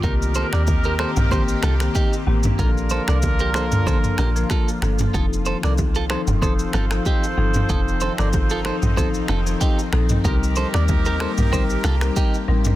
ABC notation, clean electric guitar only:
X:1
M:4/4
L:1/16
Q:"Swing 16ths" 1/4=94
K:Fmix
V:1 name="Clean electric guitar"
[GB] z [Ac] [Bd] z [GB] [Ac] z [Gc] z [FA] z [EG]2 z2 | [FB] z [Ac] [Bd] z [GB] [Ac] z [Ac] z [GB] z [FA]2 z2 | [FA] z [Ac] [Bd] z [FA] [Ac] z [Ac] z [FA] z [EG]2 z2 | [FA] z [Ac] [Bd] z [FA] [Ac] z [Ac] z [FA] z [EG]2 z2 |
[GB] z [Ac] [Bd] z [GB] [Ac] z [Gc] z [FA] z [EG]2 z2 |]